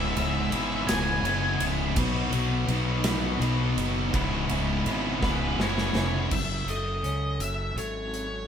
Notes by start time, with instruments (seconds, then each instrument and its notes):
Already playing: fingered electric bass C#1, distorted electric guitar C#2 G#2 C#3 G#3 B3 E4, lead electric guitar E5
0.15 fingered electric bass C#1, distorted electric guitar C#3 G#3 B3 E4, lead electric guitar E5, ride
0.51 fingered electric bass G#1, distorted electric guitar C#3 G#3 B3 E4, ride
0.87 fingered electric bass C#1, distorted electric guitar C#2 G#2 C#3 G#3 B3 E4, lead electric guitar G#5, snare, ride
1.23 fingered electric bass F#1, distorted electric guitar C#2 G#2 C#3 G#3 B3 E4, ride
1.59 fingered electric bass C#1, distorted electric guitar C#3 G#3 B3 E4, ride
1.96 fingered electric bass B1, distorted electric guitar B2 F#3 B3 D#4 F#4 B4, kick, ride
2.32 fingered electric bass B1, distorted electric guitar B3 D#4 F#4 B4, ride
2.68 fingered electric bass B1, distorted electric guitar B3 D#4 F#4, ride
2.73 distorted electric guitar B4
3.04 distorted electric guitar B2 F#3 D#4 F#4 B4, snare, ride
3.09 distorted electric guitar B3
3.40 fingered electric bass B1, distorted electric guitar B2 F#3 B3 D#4, ride
3.44 distorted electric guitar F#4 B4
3.77 fingered electric bass F#1, distorted electric guitar D#4 F#4 B4, ride
3.82 distorted electric guitar B3
4.13 fingered electric bass C#1, distorted electric guitar C#2 G#2 C#3 G#3 B3 E4, kick, ride
4.49 fingered electric bass C#1, distorted electric guitar C#3 G#3 B3 E4, ride
4.86 fingered electric bass G#1, distorted electric guitar C#3 G#3 B3 E4, ride
5.23 fingered electric bass C#1, distorted electric guitar C#2 G#2 C#3 G#3 B3 E4, lead electric guitar B4, kick, snare
5.57 fingered electric bass F#1, distorted electric guitar C#2 G#2 C#3 G#3, lead electric guitar C#5, snare
5.62 distorted electric guitar B3 E4
5.78 snare
5.94 fingered electric bass F1, distorted electric guitar G#3 B3 E4, snare
5.99 distorted electric guitar C#3
6.31 fingered electric bass F#1, clean electric guitar F#2, lead electric guitar E5, kick, crash
6.66 fingered electric bass F#1, clean electric guitar A3, lead electric guitar D#5, closed hi-hat
7.03 fingered electric bass C#2, clean electric guitar C#4, closed hi-hat
7.39 fingered electric bass F#1, clean electric guitar F#3, lead electric guitar E5, closed hi-hat
7.76 fingered electric bass G#1, clean electric guitar A3, lead electric guitar C#5, closed hi-hat
8.13 clean electric guitar F#3, closed hi-hat